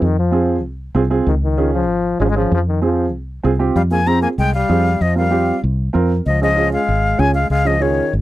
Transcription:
0.02 0.64 F2 medium
0.02 0.18 D#3 medium
0.19 0.62 F3 medium
0.32 0.54 C4 medium
0.32 0.54 F4 medium
0.32 0.55 G#4 medium
0.64 0.89 C2 medium
0.95 1.20 C2 medium
0.95 1.01 C4 medium
0.95 1.01 F4 medium
0.95 1.01 G#4 medium
1.10 1.26 C4 medium
1.10 1.26 F4 medium
1.10 1.27 G#4 medium
1.26 1.88 C#2 medium
1.26 1.35 D#3 medium
1.44 1.72 D#3 medium
1.57 1.79 C#4 medium
1.57 1.80 F4 medium
1.57 1.80 G#4 medium
1.75 2.18 F3 medium
1.88 2.14 G#1 medium
2.19 2.45 G#1 medium
2.19 2.26 G#3 medium
2.19 2.25 C#4 medium
2.19 2.25 F4 medium
2.19 2.26 G#4 medium
2.25 2.31 F3 medium
2.29 2.36 G#3 loud
2.35 2.51 F3 medium
2.35 2.51 C#4 medium
2.35 2.51 F4 medium
2.35 2.51 G#4 medium
2.52 3.14 F2 medium
2.52 2.61 F3 medium
2.68 2.82 D#3 medium
2.82 3.12 F3 medium
2.82 3.04 C4 medium
2.82 3.04 F4 medium
2.82 3.04 G#4 medium
3.14 3.39 C2 medium
3.43 3.70 C2 medium
3.43 3.50 C4 medium
3.43 3.50 F4 medium
3.43 3.50 G#4 medium
3.59 3.75 C4 medium
3.59 3.76 F4 medium
3.59 3.76 G4 medium
3.76 4.26 F2 medium
3.76 3.83 G3 medium
3.76 3.82 F5 medium
3.91 4.09 A#3 medium
3.91 3.97 C4 medium
3.91 3.97 F4 soft
3.91 3.97 G#4 medium
3.91 4.09 G#5 medium
4.06 4.29 C4 medium
4.06 4.21 C4 medium
4.06 4.29 F4 medium
4.06 4.29 G#4 medium
4.06 4.22 A#5 medium
4.22 4.29 A#3 medium
4.22 4.28 G#5 medium
4.38 4.63 C2 medium
4.38 4.53 G#3 medium
4.38 4.53 G5 medium
4.54 5.04 G3 medium
4.54 5.03 F5 medium
4.69 4.95 F2 medium
4.69 4.86 C4 medium
4.69 4.86 F4 medium
4.69 4.86 G#4 medium
5.01 5.51 F2 medium
5.01 5.17 F3 medium
5.01 5.17 D#5 medium
5.16 5.61 G3 medium
5.16 5.22 C4 medium
5.16 5.22 F4 medium
5.16 5.22 A#4 medium
5.16 5.60 F5 medium
5.31 5.53 C4 medium
5.31 5.53 F4 medium
5.31 5.54 G4 medium
5.64 5.88 C2 medium
5.93 6.20 F2 medium
5.93 6.10 C4 medium
5.93 6.11 F4 medium
5.93 6.11 A#4 medium
6.26 6.76 C#2 medium
6.26 6.41 F3 medium
6.26 6.40 D#5 medium
6.40 6.71 F3 medium
6.40 6.46 C#4 medium
6.40 6.47 F4 medium
6.40 6.47 G#4 medium
6.40 6.71 D#5 medium
6.56 6.78 C#4 medium
6.56 6.79 F4 medium
6.56 6.79 G#4 medium
6.73 7.21 G#3 medium
6.73 7.21 F5 medium
6.88 7.13 G#1 medium
7.18 7.44 C#2 medium
7.18 7.35 C#4 medium
7.18 7.34 C#4 medium
7.18 7.35 F4 medium
7.18 7.36 G#4 medium
7.18 7.34 G#5 medium
7.35 7.49 G#3 medium
7.35 7.49 F5 medium
7.50 8.00 C#2 medium
7.50 7.68 G#3 medium
7.50 7.68 F5 medium
7.65 7.83 F3 medium
7.65 7.71 C#4 medium
7.65 7.71 F4 medium
7.65 7.71 G#4 medium
7.65 7.83 D#5 medium
7.80 8.13 D#3 medium
7.80 8.03 C#4 medium
7.80 8.03 F4 medium
7.80 8.03 G#4 medium
7.80 8.13 C#5 medium
8.13 8.22 G#1 medium

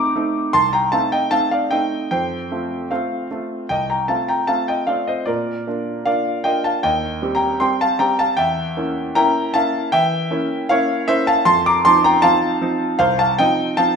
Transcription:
0.00 0.12 A3 medium
0.00 0.12 C4 soft
0.00 0.12 D#4 medium
0.00 0.51 A#5 medium
0.00 0.54 D6 loud
0.15 0.51 A3 soft
0.15 0.51 C4 soft
0.15 0.51 D#4 medium
0.53 0.92 C2 medium
0.53 0.73 A5 medium
0.53 0.74 C6 loud
0.73 0.93 G5 medium
0.73 0.93 A#5 medium
0.92 1.28 A3 soft
0.92 1.28 C4 soft
0.92 1.29 D#4 soft
0.92 1.11 F5 medium
0.92 1.12 A5 medium
1.12 1.31 D#5 medium
1.12 1.32 G5 medium
1.31 1.67 A3 soft
1.31 1.67 C4 soft
1.31 1.68 D#4 soft
1.31 1.50 F5 medium
1.31 1.51 A5 medium
1.51 1.71 D5 medium
1.51 1.72 F5 medium
1.71 2.07 A3 soft
1.71 2.08 C4 soft
1.71 2.08 D#4 soft
1.71 2.09 D#5 medium
1.71 2.09 G5 medium
2.11 2.50 F2 medium
2.11 2.87 C5 medium
2.11 2.90 G5 medium
2.51 2.87 A3 soft
2.51 2.87 C4 soft
2.51 2.87 F4 soft
2.91 3.26 A3 soft
2.91 3.27 C4 soft
2.91 3.27 F4 soft
2.91 3.66 C5 medium
2.91 3.70 F5 medium
3.31 3.66 A3 soft
3.31 3.66 C4 soft
3.31 3.67 F4 soft
3.69 4.08 C2 soft
3.69 3.89 D#5 medium
3.69 3.89 G5 medium
3.90 4.09 G5 medium
3.90 4.09 A#5 medium
4.08 4.44 A3 soft
4.08 4.44 C4 soft
4.08 4.45 F4 soft
4.08 4.28 F5 medium
4.08 4.28 A5 medium
4.28 4.47 G5 medium
4.28 4.48 A#5 medium
4.47 4.84 A3 soft
4.47 4.84 C4 soft
4.47 4.84 F4 soft
4.47 4.67 F5 medium
4.47 4.68 A5 medium
4.68 4.87 D#5 medium
4.68 4.88 G5 medium
4.87 5.23 A3 soft
4.87 5.24 C4 soft
4.87 5.24 F4 soft
4.87 5.07 D5 medium
4.87 5.07 F5 medium
5.07 5.27 C5 medium
5.07 5.28 D#5 medium
5.26 5.65 A#2 medium
5.26 6.02 A#4 medium
5.26 6.05 D5 medium
5.67 6.03 A#3 soft
5.67 6.03 D4 soft
5.67 6.03 F4 soft
6.06 6.41 A#3 soft
6.06 6.41 D4 soft
6.06 6.42 F4 soft
6.06 6.43 D5 medium
6.06 6.45 F5 medium
6.44 6.80 A#3 soft
6.44 6.80 D4 soft
6.44 6.80 F4 soft
6.44 6.63 D#5 medium
6.44 6.64 G5 medium
6.64 6.84 F5 medium
6.64 6.84 A5 medium
6.83 7.21 D#2 medium
6.83 7.32 D#5 medium
6.83 7.35 G5 medium
7.22 7.57 G3 soft
7.22 7.57 C4 soft
7.22 7.58 G4 medium
7.35 7.60 G5 medium
7.35 7.61 A#5 medium
7.60 7.96 G3 soft
7.60 7.96 C4 medium
7.60 7.96 G4 medium
7.60 7.79 G5 medium
7.60 7.80 C6 medium
7.81 7.99 F5 medium
7.81 8.00 A5 medium
7.99 8.34 G3 medium
7.99 8.35 C4 soft
7.99 8.35 G4 medium
7.99 8.18 G5 medium
7.99 8.19 A#5 medium
8.19 8.38 F5 medium
8.19 8.39 A5 medium
8.37 8.76 E2 medium
8.37 9.12 E5 medium
8.37 9.15 G5 medium
8.77 9.12 A#3 soft
8.77 9.12 C#4 soft
8.77 9.13 E4 medium
9.15 9.51 A#3 medium
9.15 9.51 C#4 medium
9.15 9.51 E4 medium
9.15 9.52 G5 medium
9.15 9.54 A#5 loud
9.54 9.89 A#3 soft
9.54 9.90 C#4 medium
9.54 9.90 E4 medium
9.54 9.91 F5 medium
9.54 9.93 A5 medium
9.92 10.30 E3 medium
9.92 10.66 E5 medium
9.92 10.69 G5 loud
10.31 10.66 A#3 medium
10.31 10.66 C#4 medium
10.31 10.66 E4 medium
10.69 11.04 A#3 medium
10.69 11.05 C#4 medium
10.69 11.05 E4 medium
10.69 11.06 C#5 medium
10.69 11.08 F5 loud
11.08 11.43 A#3 medium
11.08 11.43 C#4 medium
11.08 11.43 E4 medium
11.08 11.26 C5 medium
11.08 11.27 E5 loud
11.27 11.46 F5 medium
11.27 11.45 A5 loud
11.45 11.83 F2 medium
11.45 11.64 A5 medium
11.45 11.65 C6 loud
11.66 11.84 A#5 medium
11.66 11.85 D6 loud
11.85 12.20 F3 medium
11.85 12.20 C4 medium
11.85 12.20 D#4 medium
11.85 12.03 A5 medium
11.85 12.04 C6 loud
12.04 12.23 G5 medium
12.04 12.23 A#5 loud
12.22 12.57 F3 medium
12.22 12.58 C4 medium
12.22 12.57 D#4 medium
12.22 12.96 F5 medium
12.22 12.99 A5 loud
12.61 12.96 F3 medium
12.61 12.96 C4 medium
12.61 12.96 D#4 medium
12.99 13.37 C2 medium
12.99 13.18 C5 medium
12.99 13.19 F5 loud
13.19 13.38 F5 medium
13.19 13.38 A5 loud
13.38 13.74 F3 medium
13.38 13.74 C4 medium
13.38 13.75 D#4 medium
13.38 13.76 D#5 medium
13.38 13.78 G5 loud
13.77 13.96 F3 medium
13.77 13.96 C4 medium
13.77 13.96 D#4 medium
13.77 13.96 F5 medium
13.77 13.96 A5 loud

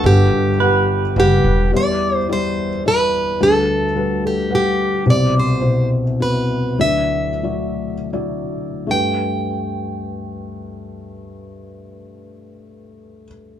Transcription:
0.00 0.28 G1 medium
0.00 0.29 F#4 medium
0.05 1.69 G1 medium
0.05 1.69 G2 medium
0.05 0.49 G3 medium
0.05 1.18 G4 medium
0.05 0.49 B4 medium
0.05 0.49 F#5 medium
0.60 1.01 G3 medium
0.60 1.71 B4 medium
0.60 1.01 B4 medium
0.60 1.01 F#5 medium
1.16 1.42 F#1 medium
1.16 1.71 G3 medium
1.16 1.70 G4 medium
1.16 1.73 B4 medium
1.16 1.73 F#5 medium
1.44 1.70 E1 medium
1.72 3.36 E2 soft
1.72 3.36 E3 soft
1.72 2.17 G3 medium
1.72 2.17 E4 soft
1.72 2.18 D5 medium
1.77 2.16 D5 medium
2.16 2.27 C5 medium
2.29 2.69 G3 medium
2.29 2.69 E4 soft
2.29 2.82 C5 medium
2.29 2.69 D5 medium
2.85 3.39 G3 soft
2.85 3.40 E4 soft
2.85 3.43 B4 medium
2.85 3.40 D5 medium
3.40 5.02 D2 soft
3.40 5.02 D3 soft
3.40 3.84 G3 medium
3.40 3.84 F#4 soft
3.40 4.26 A4 medium
3.40 3.85 B4 medium
3.95 4.35 G3 soft
3.95 4.36 F#4 soft
3.95 4.36 B4 medium
4.27 4.53 G4 medium
4.49 5.05 G3 soft
4.49 5.06 B4 soft
4.49 5.06 F#5 soft
4.55 5.04 G4 medium
5.06 6.75 C2 soft
5.06 5.50 B2 soft
5.06 6.75 C3 soft
5.06 5.50 E4 soft
5.06 5.51 C5 soft
5.10 5.34 D5 medium
5.39 5.89 C5 medium
5.61 6.03 B2 soft
5.61 6.03 E4 soft
5.61 6.03 C5 medium
6.20 6.79 B3 soft
6.20 6.77 E4 soft
6.20 6.80 F#4 medium
6.20 6.81 B4 medium
6.78 8.85 D2 soft
6.78 8.85 D3 soft
6.78 7.29 F#3 soft
6.78 7.30 E4 soft
6.78 7.30 D5 medium
6.78 8.09 E5 medium
7.43 7.93 F#3 soft
7.43 7.93 E4 soft
7.43 7.93 D5 soft
8.13 8.89 F#3 soft
8.13 8.89 E4 soft
8.13 8.89 D5 medium
8.87 13.25 G2 soft
8.87 13.23 A3 soft
8.87 13.25 G4 soft
8.87 13.27 B4 soft
8.91 13.27 G5 medium

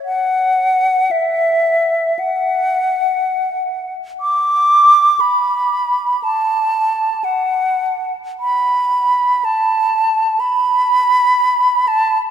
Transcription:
0.05 1.13 F#5 soft
1.11 2.21 E5 soft
2.19 3.94 F#5 soft
4.21 5.22 D6 medium
5.20 6.25 B5 medium
6.24 7.26 A5 soft
7.24 8.14 F#5 medium
8.40 9.46 B5 medium
9.45 10.41 A5 medium
10.40 11.89 B5 medium
11.88 12.18 A5 medium

